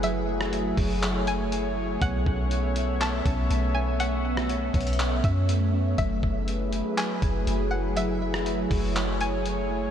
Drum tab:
HH |x-------x---o---x---x---x-------|x-------x---x---x---x---x-------|x-------x---xxxxx---x---x-------|x-------x---x---x---x---x-------|
CP |----------------x---------------|----------------x---------------|----------------x---------------|----------------x---------------|
SD |------r-------------------------|--------------------------------|------r-------------------------|--------------------------------|
BD |------------o-------------------|o---o---------------o-----------|------------o-------o-----------|o---o---------------o-----------|

HH |x-------x---o---x---x---x-------|
CP |----------------x---------------|
SD |------r-------------------------|
BD |------------o-------------------|